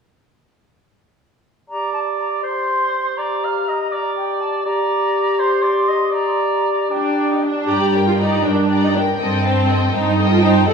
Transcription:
1.69 G4 D5 A#5
1.93 A5
2.17 A#5
2.42 C5 C6
3.17 D5 A#5
3.44 F5
3.68 D#5
3.91 D5 A#5
4.17 G5
4.41 A5
4.65 G4 D5 A#5
5.40 C5 C6
5.63 D5
5.89 D#5
6.11 D5 A#5
6.90 D4 D5 G5
7.31 D#4
7.43 D4
7.67 G2 G4 D5 A#5
7.94 A#4 G5
8.07 F4
8.19 D#4 G4 D5 A#5
8.43 G2 D4 A#4 G5
8.69 G4 D5 A#5
8.83 D#4
8.94 D4 A#4 G5
9.19 G2 C4 A4 D#5 G5
9.43 C5 G5 A5
9.68 A4 D#5 G5
9.93 G2 D#4 C5 G5 A5
10.17 A4 D#5 G5
10.30 F4
10.41 D#4 C5 G5 A5
10.67 F#2 A4 D5 F#5

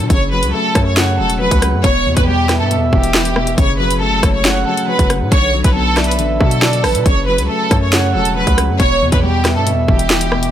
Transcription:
Already playing: D3 F#3 B3 D5
0.10 F#1 C#3 C#5, kick, closed hi-hat
0.32 F#3 B4
0.43 C#2, closed hi-hat
0.53 A3 A4
0.75 F#2 C#5, kick, cross-stick, closed hi-hat
0.86 C#5
0.97 C#3 F#5, snare, closed hi-hat
1.19 E1 F#3 A4
1.30 closed hi-hat
1.40 F#3 B4
1.51 C#2, kick, closed hi-hat
1.62 C#3, cross-stick, closed hi-hat
1.73 F#2
1.84 E1 B2 C#5, kick, closed hi-hat
2.06 E2 E3
2.17 E2 B4, kick, closed hi-hat
2.27 G3 G4
2.49 B4 E5, cross-stick, snare, closed hi-hat
2.60 G2 A4
2.71 B2, closed hi-hat
2.76 E2
2.92 E1 E3 G4, kick
3.04 closed hi-hat
3.14 E3, snare
3.25 closed hi-hat
3.36 B2, cross-stick
3.47 closed hi-hat
3.58 F#1 C#3 C#5, kick, closed hi-hat
3.80 F#3 B4
3.90 closed hi-hat
4.01 G1 A3 A4
4.12 F#1
4.23 F#1 C#5, kick, cross-stick, closed hi-hat
4.34 C#5
4.44 C#3 F#5, snare, closed hi-hat
4.67 F#3 A4
4.77 closed hi-hat
4.88 F#3 B4
4.99 F#1, kick, closed hi-hat
5.10 C#3, cross-stick, closed hi-hat
5.21 A2
5.32 B1 D3 C#5, kick, closed hi-hat
5.54 F#3
5.64 B1 B4, kick, closed hi-hat
5.75 B3 A4
5.97 D5 E5, cross-stick, snare, closed hi-hat
6.04 B4, closed hi-hat
6.11 closed hi-hat
6.19 A1 D3, closed hi-hat
6.40 B2 F#3 A4, kick
6.51 closed hi-hat
6.62 F#3 D5, snare
6.73 closed hi-hat
6.84 A1 D3 B4, cross-stick, open hi-hat
6.95 B2, closed hi-hat
7.05 F#1 C#3 C#5, kick, closed hi-hat
7.28 F#3 B4
7.38 C#2, closed hi-hat
7.49 A3 A4
7.71 F#2 C#5, kick, cross-stick, closed hi-hat
7.82 C#5
7.92 C#3 F#5, snare, closed hi-hat
8.14 E1 F#3 A4
8.25 closed hi-hat
8.36 F#3 B4
8.47 C#2, kick, closed hi-hat
8.57 C#3, cross-stick, closed hi-hat
8.69 F#2
8.80 E1 B2 C#5, kick, closed hi-hat
9.01 E2 E3
9.12 E2 B4, kick, closed hi-hat
9.23 G3 G4
9.45 B4 E5, cross-stick, snare, closed hi-hat
9.56 G2 A4
9.66 B2, closed hi-hat
9.72 E2
9.88 E1 E3 G4, kick
9.99 closed hi-hat
10.10 E3, snare
10.21 closed hi-hat
10.32 B2, cross-stick
10.43 closed hi-hat

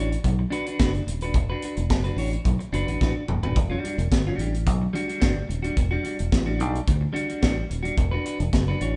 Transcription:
Already playing: A1 D4 F#4
0.00 C#5
0.11 muted clean electric guitar stroke, closed hi-hat
0.24 B1, muted clean electric guitar stroke, kick, closed hi-hat
0.39 muted clean electric guitar stroke
0.50 D4 F#4 B4, closed hi-hat
0.66 D4 F#4 B4, closed hi-hat
0.79 F#1 D4 F#4 B4, kick, snare
0.94 muted clean electric guitar stroke, closed hi-hat
1.07 D#1, muted clean electric guitar stroke, closed hi-hat
1.21 D4 F#4 B4, closed hi-hat
1.34 E1, muted clean electric guitar stroke, kick, closed hi-hat
1.50 D4 F#4 B4
1.62 D4 F#4 B4, closed hi-hat
1.77 E1, muted clean electric guitar stroke, closed hi-hat
1.90 F#1, muted clean electric guitar stroke, kick, snare
2.04 D4 F#4 B4, closed hi-hat
2.16 A1 D4 F#4 C#5, open hi-hat
2.32 muted clean electric guitar stroke, closed hi-hat
2.44 B1, muted clean electric guitar stroke, kick, closed hi-hat
2.59 muted clean electric guitar stroke, closed hi-hat
2.72 F#1 D4 F#4 B4, closed hi-hat
2.87 A1 D4 F#4 B4, closed hi-hat
3.01 A1 D4 F#4 B4, kick, snare
3.15 muted clean electric guitar stroke
3.28 E1, muted clean electric guitar stroke, mid tom
3.43 D#1 D4 F#4 B4, floor tom
3.56 E1, muted clean electric guitar stroke, kick, closed hi-hat
3.70 G3 D4 F#4
3.84 G3 D4 F#4, closed hi-hat
3.98 E1, muted clean electric guitar stroke, closed hi-hat
4.11 G1, muted clean electric guitar stroke, kick, snare
4.27 G3 D4 F#4
4.38 A1 G3 D4 G4, closed hi-hat
4.53 muted clean electric guitar stroke, closed hi-hat
4.67 B1, muted clean electric guitar stroke, kick, closed hi-hat
4.81 muted clean electric guitar stroke
4.93 G3 D4 F#4, closed hi-hat
5.08 G3 D4 F#4, closed hi-hat
5.20 G1 G3 D4 F#4, kick, snare
5.36 muted clean electric guitar stroke
5.48 D#1, muted clean electric guitar stroke, closed hi-hat
5.63 G3 D4 F#4, closed hi-hat
5.76 E1, muted clean electric guitar stroke, kick, closed hi-hat
5.91 G3 D4 F#4
6.03 G3 D4 F#4, closed hi-hat
6.19 E1, muted clean electric guitar stroke, closed hi-hat
6.32 A1, muted clean electric guitar stroke, kick, snare
6.46 G3 D4 F#4
6.59 B1 G3 D4 G4, closed hi-hat
6.74 muted clean electric guitar stroke, closed hi-hat
6.87 D2, muted clean electric guitar stroke, kick, closed hi-hat
7.01 muted clean electric guitar stroke
7.13 G3 D4 F#4, closed hi-hat
7.28 G3 D4 F#4, closed hi-hat
7.42 A1 G3 D4 F#4, kick, snare
7.56 muted clean electric guitar stroke
7.70 D#1, muted clean electric guitar stroke, closed hi-hat
7.83 G3 D4 F#4, closed hi-hat
7.97 E1, muted clean electric guitar stroke, kick, closed hi-hat
8.11 D4 F#4 B4
8.24 D4 F#4 B4, closed hi-hat
8.40 E1, muted clean electric guitar stroke, closed hi-hat
8.53 F#1, muted clean electric guitar stroke, kick, snare
8.68 D4 F#4 B4
8.80 A1 D4 F#4 C#5, closed hi-hat

